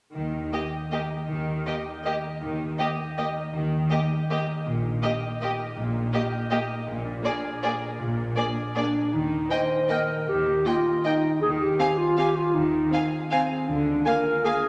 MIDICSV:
0, 0, Header, 1, 8, 480
1, 0, Start_track
1, 0, Key_signature, -3, "major"
1, 0, Tempo, 375940
1, 199, Time_signature, 3, 2, 24, 8
1, 5490, Tempo, 369914
1, 10770, Tempo, 387347
1, 12690, Tempo, 377358
1, 18753, End_track
2, 0, Start_track
2, 0, Title_t, "Violin section"
2, 0, Program_c, 0, 48
2, 676, Note_on_c, 0, 75, 28
2, 779, Note_off_c, 0, 75, 0
2, 1177, Note_on_c, 0, 75, 25
2, 1279, Note_off_c, 0, 75, 0
2, 2123, Note_on_c, 0, 75, 28
2, 2225, Note_off_c, 0, 75, 0
2, 2612, Note_on_c, 0, 75, 27
2, 2715, Note_off_c, 0, 75, 0
2, 3551, Note_on_c, 0, 75, 33
2, 3653, Note_off_c, 0, 75, 0
2, 4049, Note_on_c, 0, 75, 31
2, 4151, Note_off_c, 0, 75, 0
2, 4995, Note_on_c, 0, 75, 34
2, 5097, Note_off_c, 0, 75, 0
2, 5501, Note_on_c, 0, 75, 32
2, 5605, Note_off_c, 0, 75, 0
2, 6437, Note_on_c, 0, 75, 39
2, 6541, Note_off_c, 0, 75, 0
2, 6942, Note_on_c, 0, 75, 32
2, 7046, Note_off_c, 0, 75, 0
2, 7870, Note_on_c, 0, 75, 42
2, 7974, Note_off_c, 0, 75, 0
2, 8354, Note_on_c, 0, 75, 37
2, 8457, Note_off_c, 0, 75, 0
2, 9312, Note_on_c, 0, 74, 44
2, 9416, Note_off_c, 0, 74, 0
2, 9811, Note_on_c, 0, 74, 39
2, 9915, Note_off_c, 0, 74, 0
2, 10766, Note_on_c, 0, 74, 40
2, 10866, Note_off_c, 0, 74, 0
2, 11268, Note_on_c, 0, 74, 37
2, 11367, Note_off_c, 0, 74, 0
2, 12181, Note_on_c, 0, 79, 36
2, 12280, Note_off_c, 0, 79, 0
2, 12674, Note_on_c, 0, 79, 29
2, 12775, Note_off_c, 0, 79, 0
2, 13628, Note_on_c, 0, 79, 33
2, 13730, Note_off_c, 0, 79, 0
2, 14128, Note_on_c, 0, 79, 35
2, 14230, Note_off_c, 0, 79, 0
2, 15075, Note_on_c, 0, 80, 36
2, 15177, Note_off_c, 0, 80, 0
2, 15576, Note_on_c, 0, 80, 32
2, 15678, Note_off_c, 0, 80, 0
2, 16520, Note_on_c, 0, 80, 39
2, 16621, Note_off_c, 0, 80, 0
2, 17013, Note_on_c, 0, 80, 38
2, 17115, Note_off_c, 0, 80, 0
2, 17949, Note_on_c, 0, 80, 40
2, 18050, Note_off_c, 0, 80, 0
2, 18449, Note_on_c, 0, 80, 40
2, 18551, Note_off_c, 0, 80, 0
2, 18753, End_track
3, 0, Start_track
3, 0, Title_t, "Harp"
3, 0, Program_c, 1, 46
3, 191, Note_on_c, 1, 51, 33
3, 425, Note_on_c, 1, 63, 24
3, 660, Note_on_c, 1, 70, 30
3, 925, Note_on_c, 1, 79, 26
3, 1169, Note_on_c, 1, 75, 30
3, 1393, Note_off_c, 1, 70, 0
3, 1408, Note_on_c, 1, 70, 27
3, 1618, Note_off_c, 1, 51, 0
3, 1634, Note_on_c, 1, 51, 32
3, 1858, Note_off_c, 1, 63, 0
3, 1873, Note_on_c, 1, 63, 23
3, 2099, Note_off_c, 1, 70, 0
3, 2115, Note_on_c, 1, 70, 32
3, 2349, Note_off_c, 1, 79, 0
3, 2364, Note_on_c, 1, 79, 31
3, 2599, Note_off_c, 1, 75, 0
3, 2614, Note_on_c, 1, 75, 30
3, 2839, Note_off_c, 1, 70, 0
3, 2854, Note_on_c, 1, 70, 29
3, 3063, Note_off_c, 1, 51, 0
3, 3078, Note_on_c, 1, 51, 33
3, 3291, Note_off_c, 1, 63, 0
3, 3306, Note_on_c, 1, 63, 24
3, 3533, Note_off_c, 1, 70, 0
3, 3548, Note_on_c, 1, 70, 27
3, 3784, Note_off_c, 1, 79, 0
3, 3800, Note_on_c, 1, 79, 32
3, 4032, Note_off_c, 1, 75, 0
3, 4047, Note_on_c, 1, 75, 33
3, 4275, Note_off_c, 1, 70, 0
3, 4291, Note_on_c, 1, 70, 27
3, 4492, Note_off_c, 1, 51, 0
3, 4507, Note_on_c, 1, 51, 30
3, 4734, Note_off_c, 1, 63, 0
3, 4749, Note_on_c, 1, 63, 22
3, 4980, Note_off_c, 1, 70, 0
3, 4995, Note_on_c, 1, 70, 33
3, 5233, Note_off_c, 1, 79, 0
3, 5248, Note_on_c, 1, 79, 35
3, 5472, Note_off_c, 1, 75, 0
3, 5488, Note_on_c, 1, 75, 36
3, 5712, Note_off_c, 1, 70, 0
3, 5727, Note_on_c, 1, 70, 31
3, 5962, Note_on_c, 1, 46, 37
3, 5970, Note_off_c, 1, 51, 0
3, 6185, Note_off_c, 1, 63, 0
3, 6201, Note_on_c, 1, 63, 30
3, 6420, Note_off_c, 1, 70, 0
3, 6436, Note_on_c, 1, 70, 35
3, 6671, Note_off_c, 1, 79, 0
3, 6686, Note_on_c, 1, 79, 35
3, 6918, Note_off_c, 1, 75, 0
3, 6933, Note_on_c, 1, 75, 42
3, 7147, Note_off_c, 1, 70, 0
3, 7163, Note_on_c, 1, 70, 34
3, 7375, Note_off_c, 1, 46, 0
3, 7390, Note_on_c, 1, 46, 37
3, 7603, Note_off_c, 1, 63, 0
3, 7619, Note_on_c, 1, 63, 35
3, 7846, Note_off_c, 1, 70, 0
3, 7862, Note_on_c, 1, 70, 40
3, 8091, Note_off_c, 1, 79, 0
3, 8107, Note_on_c, 1, 79, 46
3, 8339, Note_off_c, 1, 75, 0
3, 8355, Note_on_c, 1, 75, 43
3, 8575, Note_off_c, 1, 70, 0
3, 8590, Note_on_c, 1, 70, 34
3, 8807, Note_off_c, 1, 46, 0
3, 8822, Note_on_c, 1, 46, 48
3, 8837, Note_off_c, 1, 63, 0
3, 8837, Note_off_c, 1, 79, 0
3, 8839, Note_off_c, 1, 75, 0
3, 9059, Note_on_c, 1, 62, 34
3, 9297, Note_off_c, 1, 70, 0
3, 9312, Note_on_c, 1, 70, 43
3, 9568, Note_on_c, 1, 80, 42
3, 9811, Note_on_c, 1, 74, 47
3, 10038, Note_off_c, 1, 70, 0
3, 10054, Note_on_c, 1, 70, 36
3, 10268, Note_off_c, 1, 46, 0
3, 10284, Note_on_c, 1, 46, 46
3, 10495, Note_off_c, 1, 62, 0
3, 10511, Note_on_c, 1, 62, 32
3, 10744, Note_off_c, 1, 70, 0
3, 10759, Note_on_c, 1, 70, 36
3, 10983, Note_off_c, 1, 80, 0
3, 10997, Note_on_c, 1, 80, 38
3, 11234, Note_off_c, 1, 74, 0
3, 11249, Note_on_c, 1, 74, 41
3, 11471, Note_off_c, 1, 70, 0
3, 11486, Note_on_c, 1, 70, 33
3, 11710, Note_on_c, 1, 51, 34
3, 11736, Note_off_c, 1, 80, 0
3, 11740, Note_off_c, 1, 62, 0
3, 11740, Note_off_c, 1, 74, 0
3, 11742, Note_off_c, 1, 46, 0
3, 11943, Note_on_c, 1, 58, 24
3, 12180, Note_on_c, 1, 67, 34
3, 12417, Note_off_c, 1, 70, 0
3, 12432, Note_on_c, 1, 70, 29
3, 12676, Note_on_c, 1, 75, 33
3, 12906, Note_off_c, 1, 70, 0
3, 12921, Note_on_c, 1, 70, 31
3, 13123, Note_off_c, 1, 51, 0
3, 13139, Note_on_c, 1, 51, 33
3, 13360, Note_off_c, 1, 58, 0
3, 13375, Note_on_c, 1, 58, 29
3, 13607, Note_off_c, 1, 67, 0
3, 13622, Note_on_c, 1, 67, 34
3, 13862, Note_off_c, 1, 70, 0
3, 13877, Note_on_c, 1, 70, 31
3, 14111, Note_off_c, 1, 75, 0
3, 14126, Note_on_c, 1, 75, 38
3, 14352, Note_off_c, 1, 70, 0
3, 14367, Note_on_c, 1, 70, 35
3, 14580, Note_off_c, 1, 51, 0
3, 14595, Note_on_c, 1, 51, 35
3, 14610, Note_off_c, 1, 58, 0
3, 14612, Note_off_c, 1, 67, 0
3, 14616, Note_off_c, 1, 70, 0
3, 14829, Note_on_c, 1, 63, 28
3, 15078, Note_on_c, 1, 65, 33
3, 15326, Note_on_c, 1, 68, 33
3, 15574, Note_on_c, 1, 72, 37
3, 15798, Note_off_c, 1, 68, 0
3, 15813, Note_on_c, 1, 68, 32
3, 16024, Note_off_c, 1, 51, 0
3, 16039, Note_on_c, 1, 51, 38
3, 16259, Note_off_c, 1, 63, 0
3, 16275, Note_on_c, 1, 63, 29
3, 16507, Note_off_c, 1, 65, 0
3, 16522, Note_on_c, 1, 65, 33
3, 16750, Note_off_c, 1, 68, 0
3, 16765, Note_on_c, 1, 68, 37
3, 16994, Note_off_c, 1, 72, 0
3, 17010, Note_on_c, 1, 72, 42
3, 17240, Note_off_c, 1, 68, 0
3, 17256, Note_on_c, 1, 68, 35
3, 17482, Note_on_c, 1, 50, 37
3, 17504, Note_off_c, 1, 72, 0
3, 17507, Note_off_c, 1, 51, 0
3, 17508, Note_off_c, 1, 75, 0
3, 17509, Note_off_c, 1, 63, 0
3, 17706, Note_on_c, 1, 56, 33
3, 17939, Note_off_c, 1, 65, 0
3, 17954, Note_on_c, 1, 65, 38
3, 18190, Note_off_c, 1, 68, 0
3, 18205, Note_on_c, 1, 68, 35
3, 18455, Note_on_c, 1, 70, 40
3, 18672, Note_off_c, 1, 68, 0
3, 18687, Note_on_c, 1, 68, 39
3, 18753, Note_off_c, 1, 50, 0
3, 18753, Note_off_c, 1, 56, 0
3, 18753, Note_off_c, 1, 65, 0
3, 18753, Note_off_c, 1, 68, 0
3, 18753, Note_off_c, 1, 70, 0
3, 18753, End_track
4, 0, Start_track
4, 0, Title_t, "Violin section"
4, 0, Program_c, 2, 48
4, 686, Note_on_c, 2, 67, 28
4, 788, Note_off_c, 2, 67, 0
4, 1177, Note_on_c, 2, 67, 30
4, 1279, Note_off_c, 2, 67, 0
4, 2130, Note_on_c, 2, 67, 26
4, 2232, Note_off_c, 2, 67, 0
4, 2624, Note_on_c, 2, 67, 28
4, 2726, Note_off_c, 2, 67, 0
4, 3562, Note_on_c, 2, 67, 29
4, 3664, Note_off_c, 2, 67, 0
4, 4054, Note_on_c, 2, 67, 29
4, 4157, Note_off_c, 2, 67, 0
4, 4986, Note_on_c, 2, 67, 32
4, 5088, Note_off_c, 2, 67, 0
4, 5494, Note_on_c, 2, 67, 32
4, 5598, Note_off_c, 2, 67, 0
4, 6439, Note_on_c, 2, 67, 36
4, 6543, Note_off_c, 2, 67, 0
4, 6948, Note_on_c, 2, 67, 32
4, 7052, Note_off_c, 2, 67, 0
4, 7873, Note_on_c, 2, 67, 39
4, 7977, Note_off_c, 2, 67, 0
4, 8354, Note_on_c, 2, 67, 37
4, 8458, Note_off_c, 2, 67, 0
4, 9328, Note_on_c, 2, 68, 41
4, 9432, Note_off_c, 2, 68, 0
4, 9809, Note_on_c, 2, 68, 40
4, 9913, Note_off_c, 2, 68, 0
4, 10766, Note_on_c, 2, 68, 37
4, 10865, Note_off_c, 2, 68, 0
4, 11252, Note_on_c, 2, 68, 33
4, 11351, Note_off_c, 2, 68, 0
4, 12190, Note_on_c, 2, 75, 35
4, 12289, Note_off_c, 2, 75, 0
4, 12661, Note_on_c, 2, 75, 28
4, 12762, Note_off_c, 2, 75, 0
4, 13630, Note_on_c, 2, 75, 34
4, 13732, Note_off_c, 2, 75, 0
4, 14123, Note_on_c, 2, 75, 32
4, 14225, Note_off_c, 2, 75, 0
4, 15072, Note_on_c, 2, 77, 36
4, 15174, Note_off_c, 2, 77, 0
4, 15570, Note_on_c, 2, 77, 36
4, 15671, Note_off_c, 2, 77, 0
4, 16518, Note_on_c, 2, 77, 36
4, 16620, Note_off_c, 2, 77, 0
4, 17009, Note_on_c, 2, 77, 37
4, 17111, Note_off_c, 2, 77, 0
4, 17961, Note_on_c, 2, 77, 42
4, 18063, Note_off_c, 2, 77, 0
4, 18460, Note_on_c, 2, 77, 37
4, 18562, Note_off_c, 2, 77, 0
4, 18753, End_track
5, 0, Start_track
5, 0, Title_t, "Clarinet"
5, 0, Program_c, 3, 71
5, 11276, Note_on_c, 3, 62, 47
5, 11708, Note_on_c, 3, 63, 48
5, 11727, Note_off_c, 3, 62, 0
5, 12179, Note_on_c, 3, 72, 57
5, 12197, Note_off_c, 3, 63, 0
5, 12664, Note_on_c, 3, 70, 48
5, 12683, Note_off_c, 3, 72, 0
5, 13147, Note_off_c, 3, 70, 0
5, 13157, Note_on_c, 3, 67, 50
5, 13639, Note_on_c, 3, 65, 51
5, 13658, Note_off_c, 3, 67, 0
5, 14133, Note_off_c, 3, 65, 0
5, 14140, Note_on_c, 3, 63, 48
5, 14585, Note_off_c, 3, 63, 0
5, 14592, Note_on_c, 3, 68, 60
5, 14698, Note_off_c, 3, 68, 0
5, 14829, Note_on_c, 3, 67, 51
5, 15306, Note_on_c, 3, 65, 49
5, 15325, Note_off_c, 3, 67, 0
5, 15553, Note_off_c, 3, 65, 0
5, 15560, Note_on_c, 3, 67, 50
5, 15792, Note_on_c, 3, 65, 45
5, 15811, Note_off_c, 3, 67, 0
5, 16024, Note_on_c, 3, 63, 52
5, 16043, Note_off_c, 3, 65, 0
5, 16763, Note_off_c, 3, 63, 0
5, 17005, Note_on_c, 3, 60, 48
5, 17482, Note_on_c, 3, 62, 57
5, 17501, Note_off_c, 3, 60, 0
5, 17958, Note_on_c, 3, 70, 65
5, 17977, Note_off_c, 3, 62, 0
5, 18451, Note_on_c, 3, 68, 56
5, 18470, Note_off_c, 3, 70, 0
5, 18753, Note_off_c, 3, 68, 0
5, 18753, End_track
6, 0, Start_track
6, 0, Title_t, "Viola section"
6, 0, Program_c, 4, 48
6, 669, Note_on_c, 4, 58, 26
6, 771, Note_off_c, 4, 58, 0
6, 1163, Note_on_c, 4, 58, 24
6, 1265, Note_off_c, 4, 58, 0
6, 2123, Note_on_c, 4, 58, 32
6, 2225, Note_off_c, 4, 58, 0
6, 2613, Note_on_c, 4, 58, 29
6, 2715, Note_off_c, 4, 58, 0
6, 3557, Note_on_c, 4, 58, 30
6, 3659, Note_off_c, 4, 58, 0
6, 4052, Note_on_c, 4, 58, 26
6, 4154, Note_off_c, 4, 58, 0
6, 4985, Note_on_c, 4, 58, 31
6, 5087, Note_off_c, 4, 58, 0
6, 5494, Note_on_c, 4, 58, 34
6, 5598, Note_off_c, 4, 58, 0
6, 6438, Note_on_c, 4, 58, 34
6, 6541, Note_off_c, 4, 58, 0
6, 6926, Note_on_c, 4, 58, 37
6, 7029, Note_off_c, 4, 58, 0
6, 7852, Note_on_c, 4, 58, 39
6, 7956, Note_off_c, 4, 58, 0
6, 8350, Note_on_c, 4, 58, 39
6, 8454, Note_off_c, 4, 58, 0
6, 9297, Note_on_c, 4, 58, 45
6, 9401, Note_off_c, 4, 58, 0
6, 9825, Note_on_c, 4, 58, 40
6, 9928, Note_off_c, 4, 58, 0
6, 10765, Note_on_c, 4, 58, 37
6, 10864, Note_off_c, 4, 58, 0
6, 11249, Note_on_c, 4, 58, 38
6, 11348, Note_off_c, 4, 58, 0
6, 12190, Note_on_c, 4, 58, 30
6, 12289, Note_off_c, 4, 58, 0
6, 12676, Note_on_c, 4, 58, 32
6, 12777, Note_off_c, 4, 58, 0
6, 13621, Note_on_c, 4, 58, 36
6, 13722, Note_off_c, 4, 58, 0
6, 14128, Note_on_c, 4, 58, 32
6, 14229, Note_off_c, 4, 58, 0
6, 15070, Note_on_c, 4, 60, 37
6, 15172, Note_off_c, 4, 60, 0
6, 15560, Note_on_c, 4, 60, 30
6, 15662, Note_off_c, 4, 60, 0
6, 16510, Note_on_c, 4, 60, 33
6, 16612, Note_off_c, 4, 60, 0
6, 17014, Note_on_c, 4, 60, 38
6, 17116, Note_off_c, 4, 60, 0
6, 17962, Note_on_c, 4, 58, 39
6, 18064, Note_off_c, 4, 58, 0
6, 18447, Note_on_c, 4, 58, 35
6, 18548, Note_off_c, 4, 58, 0
6, 18753, End_track
7, 0, Start_track
7, 0, Title_t, "Cello section"
7, 0, Program_c, 5, 48
7, 200, Note_on_c, 5, 51, 33
7, 595, Note_off_c, 5, 51, 0
7, 1646, Note_on_c, 5, 51, 36
7, 2040, Note_off_c, 5, 51, 0
7, 3096, Note_on_c, 5, 51, 33
7, 3485, Note_off_c, 5, 51, 0
7, 4524, Note_on_c, 5, 51, 36
7, 4910, Note_off_c, 5, 51, 0
7, 5967, Note_on_c, 5, 46, 39
7, 6355, Note_off_c, 5, 46, 0
7, 7410, Note_on_c, 5, 46, 47
7, 7789, Note_off_c, 5, 46, 0
7, 8832, Note_on_c, 5, 46, 48
7, 9227, Note_off_c, 5, 46, 0
7, 10307, Note_on_c, 5, 46, 46
7, 10693, Note_off_c, 5, 46, 0
7, 11724, Note_on_c, 5, 51, 38
7, 12114, Note_off_c, 5, 51, 0
7, 13157, Note_on_c, 5, 51, 39
7, 13548, Note_off_c, 5, 51, 0
7, 14607, Note_on_c, 5, 51, 39
7, 14997, Note_off_c, 5, 51, 0
7, 16045, Note_on_c, 5, 51, 38
7, 16439, Note_off_c, 5, 51, 0
7, 17497, Note_on_c, 5, 50, 43
7, 17885, Note_off_c, 5, 50, 0
7, 18753, End_track
8, 0, Start_track
8, 0, Title_t, "Double bass section"
8, 0, Program_c, 6, 48
8, 193, Note_on_c, 6, 39, 37
8, 592, Note_off_c, 6, 39, 0
8, 1635, Note_on_c, 6, 39, 38
8, 2034, Note_off_c, 6, 39, 0
8, 3081, Note_on_c, 6, 39, 42
8, 3477, Note_off_c, 6, 39, 0
8, 4509, Note_on_c, 6, 39, 42
8, 4903, Note_off_c, 6, 39, 0
8, 5954, Note_on_c, 6, 34, 45
8, 6348, Note_off_c, 6, 34, 0
8, 7395, Note_on_c, 6, 34, 50
8, 7782, Note_off_c, 6, 34, 0
8, 8823, Note_on_c, 6, 34, 54
8, 9222, Note_off_c, 6, 34, 0
8, 10289, Note_on_c, 6, 34, 53
8, 10684, Note_off_c, 6, 34, 0
8, 11718, Note_on_c, 6, 39, 40
8, 12091, Note_off_c, 6, 39, 0
8, 13162, Note_on_c, 6, 39, 45
8, 13531, Note_off_c, 6, 39, 0
8, 14601, Note_on_c, 6, 39, 46
8, 14974, Note_off_c, 6, 39, 0
8, 16047, Note_on_c, 6, 39, 49
8, 16420, Note_off_c, 6, 39, 0
8, 17485, Note_on_c, 6, 38, 53
8, 17859, Note_off_c, 6, 38, 0
8, 18753, End_track
0, 0, End_of_file